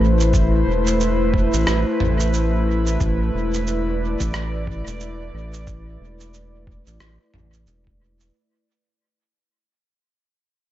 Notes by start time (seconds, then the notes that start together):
Already playing: A3 E4 B4 C5
0.00 A1
0.20 shaker
0.34 kick, shaker
0.67 E1
0.87 shaker
1.01 shaker
1.34 kick
1.54 A1, shaker
1.67 A1, cross-stick, shaker
2.00 A1, mid tom
2.20 shaker
2.34 shaker
2.87 shaker
3.00 A1, kick, shaker
3.34 E1
3.54 shaker
3.59 D5
3.67 shaker
4.20 A1, kick, shaker
4.34 cross-stick, shaker
4.67 kick
4.87 E1, shaker
5.00 shaker
5.34 A1
5.54 shaker
5.67 kick, shaker
6.01 E1
6.20 shaker
6.34 shaker
6.67 kick
6.87 A1, shaker
7.00 A1, cross-stick, shaker
7.34 A1, mid tom
7.53 shaker
7.67 E1, shaker
7.87 kick
8.20 shaker